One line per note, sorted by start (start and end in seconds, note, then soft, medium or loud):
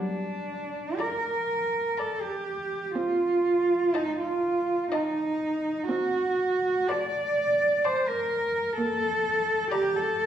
0.00 0.79 G3 soft
0.00 1.01 D4 soft
0.99 2.00 A#4 soft
0.99 1.75 D5 soft
0.99 1.75 A#5 soft
1.98 2.23 A4 medium
1.98 2.73 D5 soft
1.98 2.72 A#5 soft
2.21 2.95 G4 soft
2.96 3.75 C4 soft
2.96 3.96 F4 medium
3.94 4.19 D#4 medium
3.94 4.70 D#5 soft
3.94 4.69 A5 soft
4.19 4.92 F4 medium
4.92 5.88 D#4 medium
4.92 5.66 D#5 soft
4.92 5.66 A5 soft
5.89 6.71 C4 soft
5.89 6.91 F#4 medium
6.89 7.61 D5 soft
6.89 7.86 D5 medium
6.89 7.62 A5 soft
7.85 8.09 C5 medium
7.85 8.56 D5 soft
7.85 8.55 A5 soft
8.08 8.77 A#4 medium
8.78 9.54 A#3 medium
8.78 9.70 A4 medium
9.71 9.98 G4 medium
9.71 10.26 D5 medium
9.71 10.26 A#5 medium
9.96 10.26 A4 medium